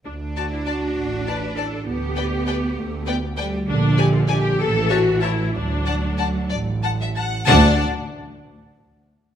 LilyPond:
<<
  \new Staff \with { instrumentName = "Violin section" } { \time 6/8 \key d \major \tempo 4. = 65 r8 a''8 a''8 r8 a''8 a''8 | r8 g''8 g''8 r8 g''8 g''8 | r8 aes''8 aes''8 r8 a''8 a''8 | r8 a''8 a''8 r8 a''8 a''8 |
a''8 r2 r8 | }
  \new Staff \with { instrumentName = "Violin section" } { \time 6/8 \key d \major r8 d''8 d''8 r8 d''8 d''8 | r8 <b' d''>8 <b' d''>8 r8 <b' d''>8 <b' d''>8 | r8 d''8 d''8 r8 <cis'' e''>8 <cis'' e''>8 | r8 <d'' fis''>8 <d'' fis''>8 d''8 fis''16 e''16 fis''8 |
<d'' fis''>8 r2 r8 | }
  \new Staff \with { instrumentName = "Viola section" } { \time 6/8 \key d \major d'8 fis'16 e'16 fis'4 b'8 a'8 | g'2~ g'8 r8 | d'8 g'16 f'16 g'8 a'8 fis'8 e'8 | d'4. r4. |
d'8 r2 r8 | }
  \new Staff \with { instrumentName = "Cello section" } { \clef bass \time 6/8 \key d \major d'2. | b4. a8 b8 g8 | d4. e4. | fis2~ fis16 r8. |
d,8 r2 r8 | }
  \new Staff \with { instrumentName = "Double bass section" } { \clef bass \time 6/8 \key d \major d,4. a,,4. | d,4. d,4. | bes,,4. a,,4. | d,4. a,,4. |
d,8 r2 r8 | }
>>